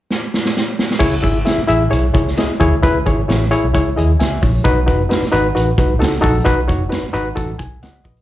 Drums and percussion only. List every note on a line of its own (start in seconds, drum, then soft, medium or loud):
0.11 snare medium
0.34 snare medium
0.45 snare medium
0.57 snare medium
0.79 snare loud
0.90 snare medium
1.00 kick loud
1.00 crash medium
1.24 kick medium
1.24 closed hi-hat medium
1.46 snare loud
1.46 closed hi-hat medium
1.70 closed hi-hat medium
1.93 closed hi-hat medium
2.15 kick medium
2.15 closed hi-hat medium
2.27 snare soft
2.37 snare loud
2.37 closed hi-hat medium
2.61 kick medium
2.61 closed hi-hat medium
2.83 kick loud
2.83 closed hi-hat medium
3.07 kick medium
3.07 closed hi-hat medium
3.30 snare loud
3.30 closed hi-hat medium
3.53 closed hi-hat medium
3.74 kick medium
3.74 closed hi-hat medium
3.98 closed hi-hat medium
4.20 snare loud
4.20 closed hi-hat medium
4.43 kick medium
4.43 open hi-hat soft
4.65 kick loud
4.65 closed hi-hat medium
4.88 kick medium
4.88 closed hi-hat medium
5.11 snare loud
5.11 closed hi-hat medium
5.23 snare soft
5.34 closed hi-hat medium
5.57 closed hi-hat medium
5.78 kick loud
5.78 closed hi-hat medium
6.01 snare loud
6.01 closed hi-hat medium
6.24 kick medium
6.24 open hi-hat soft
6.46 kick loud
6.46 closed hi-hat medium
6.69 kick medium
6.69 closed hi-hat medium
6.92 snare loud
6.92 closed hi-hat medium
7.15 closed hi-hat medium
7.37 kick medium
7.37 closed hi-hat medium
7.59 kick medium
7.59 closed hi-hat medium
7.83 snare loud
7.83 closed hi-hat medium
8.05 kick loud
8.05 closed hi-hat medium
8.17 closed hi-hat medium